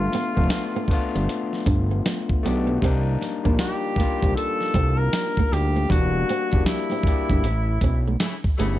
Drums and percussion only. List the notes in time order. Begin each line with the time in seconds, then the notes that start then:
0.13 snare, closed hi-hat
0.37 kick
0.50 snare, closed hi-hat
0.88 kick, closed hi-hat
1.16 closed hi-hat
1.29 closed hi-hat
1.53 snare
1.66 kick, closed hi-hat
2.06 snare, closed hi-hat
2.30 kick
2.46 closed hi-hat
2.82 kick, closed hi-hat
3.22 snare, closed hi-hat
3.45 kick
3.59 snare, closed hi-hat
3.96 kick, closed hi-hat
4.23 kick, closed hi-hat
4.37 closed hi-hat
4.61 snare
4.74 kick, closed hi-hat
5.13 snare, closed hi-hat
5.37 kick
5.53 closed hi-hat
5.90 kick, closed hi-hat
6.29 closed hi-hat
6.52 kick, closed hi-hat
6.66 snare, closed hi-hat
6.90 snare
7.03 kick, closed hi-hat
7.30 kick, closed hi-hat
7.44 closed hi-hat
7.81 kick, closed hi-hat
8.20 snare, closed hi-hat
8.44 kick
8.60 closed hi-hat